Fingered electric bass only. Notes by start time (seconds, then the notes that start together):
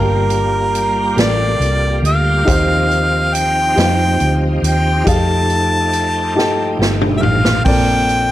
Already playing: G1
1.17 A1
1.59 C2
2.02 D2
2.47 D#2
3.77 F2
4.21 D2
4.62 D#2
5.07 F2
6.35 G2
6.79 G1
7.22 A1
7.66 A#1